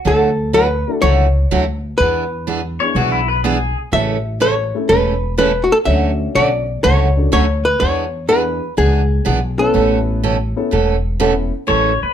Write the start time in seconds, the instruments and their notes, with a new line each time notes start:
0.05 upright bass D2, steel-string acoustic guitar D3 F#3 A3 E4 F#4, hollow-body jazz guitar A4
0.53 steel-string acoustic guitar D3 F#3 A3 E4 F#4, hollow-body jazz guitar B4
0.88 upright piano A3 D4 E4 F#4
1.02 upright bass C#2, steel-string acoustic guitar D3 F#3 A3 E4 F#4, hollow-body jazz guitar C#5
1.51 upright bass D2, steel-string acoustic guitar D3 F#3 A3 E4 F#4
1.98 upright bass E2, steel-string acoustic guitar E3 B3 D4 G#4, hollow-body jazz guitar B4
2.47 steel-string acoustic guitar E3 B3 D4 G#4
2.80 upright piano B3 D4 E4 G#4, pedal steel guitar C#5
2.95 upright bass B1, steel-string acoustic guitar E3 B3 D4 G#4, pedal steel guitar F#4
3.12 pedal steel guitar E4
3.28 pedal steel guitar B4
3.44 steel-string acoustic guitar E3 B3 D4 G#4, pedal steel guitar G#4
3.92 upright bass A1, steel-string acoustic guitar C#3 E3 A3 C#4 A4, hollow-body jazz guitar E5
4.40 steel-string acoustic guitar C#3 E3 A3 C#4 A4, hollow-body jazz guitar C#5
4.75 upright piano A3 C#4 E4 A4
4.89 upright bass E1, steel-string acoustic guitar C#3 E3 A3 C#4 A4, hollow-body jazz guitar B4
5.38 steel-string acoustic guitar C#3 E3 A3 C#4 A4, hollow-body jazz guitar B4
5.64 hollow-body jazz guitar F#4
5.72 hollow-body jazz guitar A4
5.85 upright bass D2, steel-string acoustic guitar D3 F#3 A3 C#4 F#4, upright piano C#4 D4 F#4 A4, hollow-body jazz guitar E5
6.35 upright bass B1, steel-string acoustic guitar D3 F#3 A3 C#4 F#4, hollow-body jazz guitar D5
6.84 upright bass C#2, steel-string acoustic guitar D3 F#3 A3 C#4 F#4, hollow-body jazz guitar C#5
7.16 upright piano C#4 D4 F#4 A4
7.32 upright bass D2, steel-string acoustic guitar D3 F#3 A3 C#4 F#4, hollow-body jazz guitar C#5
7.65 hollow-body jazz guitar B4
7.80 upright bass E2, steel-string acoustic guitar E3 B3 D4 G#4, hollow-body jazz guitar C#5
8.28 steel-string acoustic guitar E3 B3 D4 G#4, upright piano B3 D4 E4 G#4, hollow-body jazz guitar B4
8.77 upright bass C#2, steel-string acoustic guitar E3 B3 D4 G#4, hollow-body jazz guitar G#4
9.25 upright bass B1, steel-string acoustic guitar E3 B3 D4 G#4
9.59 upright piano B3 C#4 E4 B4, hollow-body jazz guitar A4
9.74 upright bass A1, steel-string acoustic guitar B2 E3 A3 C#4 A4
10.23 steel-string acoustic guitar B2 E3 A3 C#4 A4
10.56 upright piano B3 C#4 E4 A4
10.71 upright bass E1, steel-string acoustic guitar B2 E3 A3 C#4 A4
11.20 steel-string acoustic guitar B2 E3 A3 C#4 A4, upright piano B3 C#4 E4 A4
11.67 upright bass A1, steel-string acoustic guitar C#3 E3 A3 C#4 A4, pedal steel guitar C#5
12.03 pedal steel guitar B4, muted upright bass stroke